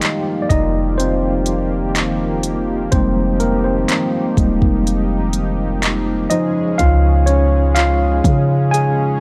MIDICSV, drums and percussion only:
0, 0, Header, 1, 2, 480
1, 0, Start_track
1, 0, Key_signature, -4, "minor"
1, 0, Tempo, 967742
1, 1450, Time_signature, 4, 2, 24, 8
1, 4564, End_track
2, 0, Start_track
2, 0, Title_t, "Drums"
2, 8, Note_on_c, 9, 42, 69
2, 15, Note_on_c, 9, 39, 102
2, 58, Note_off_c, 9, 42, 0
2, 64, Note_off_c, 9, 39, 0
2, 247, Note_on_c, 9, 36, 92
2, 250, Note_on_c, 9, 42, 64
2, 297, Note_off_c, 9, 36, 0
2, 300, Note_off_c, 9, 42, 0
2, 494, Note_on_c, 9, 42, 68
2, 544, Note_off_c, 9, 42, 0
2, 723, Note_on_c, 9, 42, 72
2, 773, Note_off_c, 9, 42, 0
2, 970, Note_on_c, 9, 42, 61
2, 975, Note_on_c, 9, 39, 102
2, 1020, Note_off_c, 9, 42, 0
2, 1025, Note_off_c, 9, 39, 0
2, 1207, Note_on_c, 9, 42, 73
2, 1257, Note_off_c, 9, 42, 0
2, 1448, Note_on_c, 9, 42, 69
2, 1449, Note_on_c, 9, 36, 109
2, 1497, Note_off_c, 9, 42, 0
2, 1499, Note_off_c, 9, 36, 0
2, 1686, Note_on_c, 9, 42, 58
2, 1736, Note_off_c, 9, 42, 0
2, 1928, Note_on_c, 9, 42, 71
2, 1934, Note_on_c, 9, 39, 106
2, 1978, Note_off_c, 9, 42, 0
2, 1984, Note_off_c, 9, 39, 0
2, 2168, Note_on_c, 9, 36, 98
2, 2171, Note_on_c, 9, 42, 60
2, 2218, Note_off_c, 9, 36, 0
2, 2221, Note_off_c, 9, 42, 0
2, 2290, Note_on_c, 9, 36, 92
2, 2340, Note_off_c, 9, 36, 0
2, 2415, Note_on_c, 9, 42, 64
2, 2464, Note_off_c, 9, 42, 0
2, 2644, Note_on_c, 9, 42, 69
2, 2694, Note_off_c, 9, 42, 0
2, 2890, Note_on_c, 9, 42, 61
2, 2895, Note_on_c, 9, 39, 108
2, 2940, Note_off_c, 9, 42, 0
2, 2945, Note_off_c, 9, 39, 0
2, 3127, Note_on_c, 9, 42, 71
2, 3177, Note_off_c, 9, 42, 0
2, 3368, Note_on_c, 9, 42, 69
2, 3370, Note_on_c, 9, 36, 110
2, 3418, Note_off_c, 9, 42, 0
2, 3419, Note_off_c, 9, 36, 0
2, 3606, Note_on_c, 9, 42, 60
2, 3656, Note_off_c, 9, 42, 0
2, 3848, Note_on_c, 9, 42, 75
2, 3855, Note_on_c, 9, 39, 101
2, 3898, Note_off_c, 9, 42, 0
2, 3904, Note_off_c, 9, 39, 0
2, 4088, Note_on_c, 9, 36, 97
2, 4091, Note_on_c, 9, 42, 62
2, 4137, Note_off_c, 9, 36, 0
2, 4140, Note_off_c, 9, 42, 0
2, 4334, Note_on_c, 9, 42, 66
2, 4384, Note_off_c, 9, 42, 0
2, 4564, End_track
0, 0, End_of_file